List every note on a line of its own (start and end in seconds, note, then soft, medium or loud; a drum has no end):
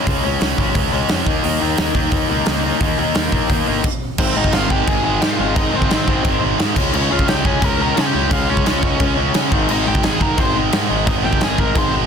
0.07 0.18 C#2 medium
0.07 0.22 C#3 medium
0.07 0.23 G#3 loud
0.07 0.23 C#4 loud
0.07 kick loud
0.07 open hi-hat medium
0.23 0.36 C#2 medium
0.23 0.39 C#3 medium
0.23 0.40 G#3 medium
0.23 0.40 C#4 medium
0.40 0.53 C#2 medium
0.40 0.57 C#3 medium
0.40 0.58 G#3 medium
0.40 0.58 C#4 loud
0.40 snare loud
0.40 open hi-hat medium
0.58 0.69 G#1 medium
0.58 0.74 C#3 medium
0.58 0.75 G#3 medium
0.58 0.75 C#4 medium
0.58 kick medium
0.75 0.87 C#2 medium
0.75 0.90 C#3 medium
0.75 0.91 G#3 medium
0.75 0.91 C#4 medium
0.75 kick loud
0.75 open hi-hat medium
0.91 1.04 C#2 medium
0.91 1.08 C#3 medium
0.91 1.08 G#3 medium
0.91 1.09 C#4 medium
1.09 1.22 F2 medium
1.09 1.25 C#3 medium
1.09 1.26 G#3 medium
1.09 1.26 C#4 loud
1.09 snare loud
1.09 open hi-hat medium
1.26 1.38 D#2 medium
1.26 1.43 D#3 medium
1.26 1.43 A#3 loud
1.26 1.44 D#4 medium
1.26 kick medium
1.43 1.56 D#2 medium
1.43 1.60 D#3 medium
1.43 1.61 A#3 medium
1.43 1.61 D#4 medium
1.43 open hi-hat medium
1.61 1.73 D#2 medium
1.61 1.78 D#3 medium
1.61 1.78 A#3 medium
1.61 1.79 D#4 medium
1.78 1.90 D#2 medium
1.78 1.94 D#3 medium
1.78 1.95 A#3 loud
1.78 1.95 D#4 loud
1.78 snare loud
1.78 open hi-hat medium
1.95 2.06 D#2 medium
1.95 2.10 D#3 medium
1.95 2.11 A#3 medium
1.95 2.12 D#4 medium
1.95 kick medium
2.12 2.23 D#2 medium
2.12 2.27 D#3 medium
2.12 2.28 A#3 loud
2.12 2.29 D#4 loud
2.12 kick loud
2.12 open hi-hat medium
2.29 2.41 C#2 medium
2.29 2.45 D#3 medium
2.29 2.46 A#3 medium
2.29 2.46 D#4 medium
2.46 2.70 C#2 medium
2.46 2.62 D#3 medium
2.46 2.63 A#3 medium
2.46 2.63 D#4 loud
2.46 snare loud
2.46 open hi-hat medium
2.63 2.79 D#3 medium
2.63 2.80 A#3 medium
2.63 2.80 D#4 medium
2.80 2.93 D#2 medium
2.80 2.97 D#3 medium
2.80 2.97 A#3 loud
2.80 2.97 D#4 medium
2.80 kick loud
2.80 open hi-hat medium
2.98 3.10 D#2 medium
2.98 3.13 D#3 medium
2.98 3.14 A#3 loud
2.98 3.14 D#4 medium
3.15 3.27 D#2 medium
3.15 3.31 D#3 medium
3.15 3.32 A#3 medium
3.15 3.32 D#4 loud
3.15 snare loud
3.15 open hi-hat medium
3.32 3.44 A#1 medium
3.32 3.48 D#3 medium
3.32 3.49 A#3 medium
3.32 3.50 D#4 loud
3.32 kick medium
3.49 3.61 D#2 medium
3.49 3.66 D#3 medium
3.49 3.66 A#3 medium
3.49 3.67 D#4 medium
3.49 kick loud
3.49 open hi-hat medium
3.67 3.79 G1 medium
3.67 3.83 D#3 medium
3.67 3.83 A#3 medium
3.67 3.84 D#4 medium
3.84 kick loud
3.84 crash loud
4.18 4.33 G#1 loud
4.18 4.36 G#2 loud
4.18 4.36 D#3 loud
4.18 4.36 G#3 loud
4.18 4.36 C4 medium
4.18 4.37 C5 medium
4.18 kick loud
4.18 crash loud
4.18 crash medium
4.36 4.51 G#1 medium
4.36 4.53 G#2 medium
4.36 4.53 D#3 loud
4.36 4.54 G#3 loud
4.36 4.53 D#4 medium
4.36 4.52 D#5 medium
4.44 kick medium
4.52 4.82 G#1 loud
4.52 4.70 G#2 loud
4.52 4.70 D#3 loud
4.52 4.71 G#3 loud
4.52 4.70 F4 medium
4.52 4.71 F5 loud
4.52 snare loud
4.52 crash medium
4.70 4.87 G#2 medium
4.70 4.87 D#3 medium
4.70 4.89 G#3 loud
4.70 4.87 G4 medium
4.70 4.88 G5 loud
4.70 kick medium
4.88 5.17 G#1 medium
4.88 5.04 G#2 loud
4.88 5.04 D#3 loud
4.88 5.05 G#3 loud
4.88 5.03 G#4 medium
4.88 5.03 G#5 loud
4.88 kick loud
4.88 crash medium
5.04 5.20 G#2 medium
5.04 5.21 D#3 medium
5.04 5.22 G#3 medium
5.04 5.21 G#4 medium
5.04 5.21 G#5 loud
5.21 5.38 G#2 loud
5.21 5.36 G#2 loud
5.21 5.38 D#3 loud
5.21 5.40 G#3 loud
5.21 5.29 G4 medium
5.21 5.30 G5 medium
5.21 snare loud
5.21 crash medium
5.30 5.54 F4 medium
5.30 5.54 F5 medium
5.39 5.54 G#1 medium
5.39 5.54 G#2 medium
5.39 5.54 D#3 medium
5.39 5.56 G#3 medium
5.55 5.71 G#1 loud
5.55 5.72 G#2 loud
5.55 5.72 D#3 loud
5.55 5.73 G#3 loud
5.55 5.72 D#4 medium
5.55 5.76 D#5 loud
5.55 kick loud
5.55 crash medium
5.73 5.88 G#1 loud
5.73 5.88 G#2 medium
5.73 5.88 D#3 medium
5.73 5.89 G#3 loud
5.73 6.39 C4 medium
5.73 6.43 C5 medium
5.82 kick medium
5.89 6.20 G#1 medium
5.89 6.05 G#2 loud
5.89 6.06 D#3 loud
5.89 6.07 G#3 loud
5.89 snare loud
5.89 crash medium
6.07 6.22 G#2 medium
6.07 6.22 D#3 loud
6.07 6.24 G#3 medium
6.07 kick medium
6.23 6.54 G#1 loud
6.23 6.39 G#2 loud
6.23 6.40 D#3 loud
6.23 6.41 G#3 loud
6.23 kick loud
6.23 crash medium
6.41 6.57 G#2 medium
6.41 6.58 D#3 medium
6.41 6.59 G#3 loud
6.58 6.75 G#2 loud
6.58 6.75 G#2 medium
6.58 6.75 D#3 loud
6.58 6.76 G#3 loud
6.58 snare loud
6.58 crash medium
6.76 6.91 C#2 medium
6.76 6.93 C#3 medium
6.76 6.93 G#3 medium
6.76 6.93 C#4 loud
6.76 kick loud
6.76 crash loud
6.93 7.08 C#2 loud
6.93 7.09 C#3 loud
6.93 7.10 G#3 loud
6.93 7.10 C#4 loud
6.93 7.11 C#4 medium
6.93 7.11 C#5 medium
6.93 crash medium
7.10 7.26 C#2 loud
7.10 7.26 C#3 medium
7.10 7.27 G#3 loud
7.10 7.27 C#4 loud
7.10 7.27 F4 medium
7.10 7.29 F5 medium
7.19 kick medium
7.27 7.57 C#2 loud
7.27 7.43 C#3 loud
7.27 7.44 G#3 loud
7.27 7.44 C#4 loud
7.27 7.44 G4 medium
7.27 7.46 G5 medium
7.27 snare loud
7.27 crash medium
7.44 7.60 C#3 medium
7.44 7.61 G#3 medium
7.44 7.60 C#4 loud
7.44 7.62 G#4 medium
7.44 7.64 G#5 loud
7.44 kick medium
7.61 7.91 C#2 loud
7.61 7.77 C#3 loud
7.61 7.79 G#3 loud
7.61 7.78 C#4 loud
7.61 7.80 A#4 medium
7.61 7.80 A#5 loud
7.61 kick loud
7.61 crash medium
7.79 7.94 C#3 medium
7.79 7.96 G#3 medium
7.79 7.95 C#4 medium
7.79 7.97 A#4 medium
7.79 7.97 A#5 loud
7.95 8.12 C#3 medium
7.95 8.14 G#3 loud
7.95 8.13 C#4 loud
7.95 8.06 G#4 medium
7.95 8.06 G#5 medium
7.95 snare loud
7.95 crash medium
8.07 8.31 G4 medium
8.07 8.30 G5 loud
8.14 8.29 C#2 medium
8.14 8.30 C#3 medium
8.14 8.31 G#3 medium
8.14 8.31 C#4 medium
8.31 8.46 C#2 loud
8.31 8.48 C#3 loud
8.31 8.49 G#3 loud
8.31 8.49 C#4 loud
8.31 8.48 F4 medium
8.31 8.50 F5 loud
8.31 kick loud
8.31 crash medium
8.49 8.63 C#2 loud
8.49 8.64 C#3 loud
8.49 8.66 G#3 medium
8.49 9.14 C#4 medium
8.49 8.65 C#4 loud
8.49 9.14 C#5 medium
8.57 kick medium
8.65 8.95 C#2 medium
8.65 8.81 C#3 loud
8.65 8.83 G#3 medium
8.65 8.82 C#4 loud
8.65 snare loud
8.65 crash medium
8.82 8.99 C#3 medium
8.82 9.00 G#3 loud
8.82 8.99 C#4 medium
8.82 kick medium
9.00 9.29 C#2 medium
9.00 9.16 C#3 medium
9.00 9.18 G#3 loud
9.00 9.17 C#4 loud
9.00 kick loud
9.00 crash medium
9.17 9.33 C#3 medium
9.17 9.34 G#3 medium
9.17 9.34 C#4 loud
9.34 9.50 C#3 medium
9.34 9.49 C#3 medium
9.34 9.53 G#3 loud
9.34 9.51 C#4 loud
9.34 snare loud
9.34 crash medium
9.52 9.66 G#1 medium
9.52 9.69 G#2 medium
9.52 9.69 D#3 loud
9.52 9.71 G#3 loud
9.52 kick loud
9.69 9.84 G#1 loud
9.69 9.86 G#2 loud
9.69 9.86 D#3 loud
9.69 9.87 G#3 loud
9.69 9.86 D#4 medium
9.69 9.88 D#5 medium
9.69 crash medium
9.87 10.02 G#1 loud
9.87 10.03 G#2 medium
9.87 10.03 D#3 medium
9.87 10.04 G#3 loud
9.87 10.03 G4 medium
9.87 10.04 G5 medium
9.95 kick medium
10.03 10.33 G#1 medium
10.03 10.19 G#2 medium
10.03 10.20 D#3 medium
10.03 10.20 G#3 loud
10.03 10.20 G#4 medium
10.03 10.21 G#5 medium
10.03 snare loud
10.03 crash medium
10.21 10.36 G#2 medium
10.21 10.36 D#3 medium
10.21 10.37 G#3 loud
10.21 10.38 A#4 medium
10.21 10.39 A#5 loud
10.21 kick medium
10.37 10.67 G#1 loud
10.37 10.54 G#2 loud
10.37 10.55 D#3 loud
10.37 10.55 G#3 loud
10.37 10.54 C5 medium
10.37 10.56 C6 loud
10.37 kick loud
10.37 crash medium
10.55 10.71 G#2 medium
10.55 10.72 D#3 medium
10.55 10.72 G#3 medium
10.72 10.88 G#2 loud
10.72 10.87 G#2 medium
10.72 10.89 D#3 medium
10.72 10.89 G#3 medium
10.72 snare loud
10.72 crash medium
10.90 11.05 G#1 medium
10.90 11.05 G#2 medium
10.90 11.06 D#3 medium
10.90 11.06 G#3 medium
11.07 11.22 G#1 loud
11.07 11.23 G#2 loud
11.07 11.23 D#3 loud
11.07 11.24 G#3 loud
11.07 11.13 D#4 medium
11.07 11.14 D#5 medium
11.07 kick loud
11.07 crash medium
11.24 11.39 G#1 medium
11.24 11.40 G#2 medium
11.24 11.41 D#3 medium
11.24 11.41 G#3 loud
11.24 11.40 G4 medium
11.24 11.40 G5 medium
11.33 kick medium
11.41 11.71 G#1 medium
11.41 11.58 G#2 medium
11.41 11.58 D#3 loud
11.41 11.59 G#3 medium
11.41 11.58 G#4 medium
11.41 11.59 G#5 medium
11.41 snare loud
11.41 crash medium
11.58 11.75 G#2 medium
11.58 11.76 D#3 medium
11.58 11.76 G#3 loud
11.58 11.75 A#4 medium
11.58 11.76 A#5 medium
11.58 kick medium
11.75 12.05 G#1 medium
11.75 11.92 G#2 loud
11.75 11.93 D#3 loud
11.75 11.93 G#3 loud
11.75 11.93 C5 medium
11.75 11.93 C6 loud
11.75 kick loud
11.75 crash medium
11.93 12.06 G#2 medium
11.93 12.06 D#3 medium
11.93 12.06 G#3 loud